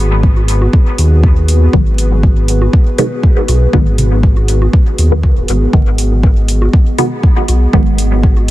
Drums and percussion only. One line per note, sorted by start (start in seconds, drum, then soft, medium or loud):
0.23 kick loud
0.37 low bongo soft
0.48 open hi-hat medium
0.62 low bongo medium
0.73 kick loud
0.98 open hi-hat medium
1.23 kick loud
1.48 open hi-hat medium
1.73 kick loud
1.98 open hi-hat medium
2.23 kick loud
2.48 open hi-hat medium
2.62 low bongo medium
2.73 kick loud
2.98 open hi-hat medium
2.98 mid tom medium
2.98 low bongo medium
3.23 kick loud
3.48 open hi-hat medium
3.48 low bongo soft
3.73 kick loud
3.98 open hi-hat medium
3.98 mid tom medium
4.23 kick loud
4.37 low bongo soft
4.48 open hi-hat medium
4.62 low bongo medium
4.73 kick loud
4.98 open hi-hat medium
5.23 kick loud
5.23 low bongo medium
5.48 open hi-hat medium
5.73 kick loud
5.98 open hi-hat medium
6.23 kick loud
6.48 open hi-hat medium
6.62 low bongo medium
6.73 kick loud
6.98 open hi-hat medium
6.98 mid tom medium
6.98 low bongo medium
7.23 kick loud
7.48 open hi-hat medium
7.48 low bongo soft
7.73 kick loud
7.98 open hi-hat medium
8.23 kick loud
8.37 low bongo medium